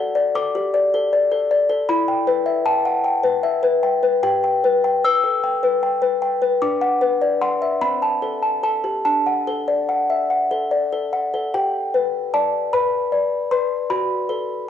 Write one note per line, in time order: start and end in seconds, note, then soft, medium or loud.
0.00 1.85 F#4 medium
0.00 0.28 A4 medium
0.00 0.32 F#5 loud
0.15 0.47 D5 medium
0.35 0.67 A4 medium
0.35 1.85 D6 loud
0.55 0.75 G4 medium
0.74 1.05 D5 medium
0.94 1.24 A4 medium
1.13 1.43 D5 medium
1.31 1.62 A4 medium
1.51 1.82 D5 medium
1.69 1.89 A4 medium
1.89 4.20 E4 medium
1.89 2.63 B5 loud
2.08 2.39 G5 medium
2.27 2.58 B4 medium
2.46 2.77 E5 medium
2.66 2.97 G5 medium
2.66 4.20 A5 loud
2.85 3.05 F#5 medium
3.04 3.36 G5 medium
3.24 3.55 B4 medium
3.44 3.75 E5 medium
3.63 3.95 B4 medium
3.83 4.15 G5 medium
4.03 4.23 B4 medium
4.23 6.57 G4 medium
4.23 4.43 G5 loud
4.44 4.77 G5 medium
4.64 4.97 B4 medium
4.84 5.16 G5 medium
5.04 5.36 B4 medium
5.04 6.57 E6 loud
5.24 5.44 A4 medium
5.44 5.75 G5 medium
5.63 5.94 B4 medium
5.83 6.14 G5 medium
6.02 6.34 B4 medium
6.22 6.54 G5 medium
6.42 6.62 B4 medium
6.62 7.78 D4 medium
6.62 7.38 D6 loud
6.81 7.13 F#5 medium
7.01 7.33 B4 medium
7.22 7.54 D5 medium
7.41 7.74 F#5 medium
7.41 7.80 C6 loud
7.62 7.82 E5 medium
7.81 9.01 C4 medium
7.81 8.60 B5 loud
8.02 8.35 A5 medium
8.22 8.55 A4 medium
8.43 8.62 A5 medium
8.63 8.97 A4 medium
8.63 9.04 A5 medium
8.84 9.05 G4 soft
9.05 11.49 D4 medium
9.05 11.08 A5 medium
9.27 9.60 F#5 medium
9.47 9.81 A4 medium
9.68 10.01 D5 soft
9.89 10.22 F#5 medium
10.10 10.30 E5 soft
10.30 10.63 F#5 medium
10.51 10.84 A4 medium
10.71 11.04 D5 soft
10.92 11.25 A4 medium
11.13 11.45 F#5 medium
11.34 11.54 A4 medium
11.54 13.86 G4 medium
11.54 12.30 G5 medium
11.94 12.57 B4 medium
12.34 12.96 D5 medium
12.34 12.71 A5 medium
12.73 13.35 B4 medium
12.73 13.48 B5 medium
13.12 13.74 D5 medium
13.51 13.90 B4 medium
13.51 13.88 C6 loud
13.90 14.69 F#4 medium
13.90 14.64 B5 loud
14.29 14.69 A4 medium